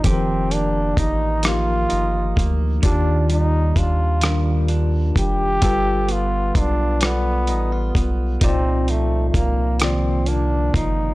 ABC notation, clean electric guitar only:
X:1
M:6/8
L:1/16
Q:3/8=43
K:Cdor
V:1 name="Clean electric guitar"
[F,G]2 B,2 E2 B,2 E2 B,2 | [E,F]2 G,2 D2 G,2 D2 G,2 | [G,A]2 =B,2 F2 B,2 E F B,2 | [C,E]2 F,2 B,2 F,2 B,2 F,2 |]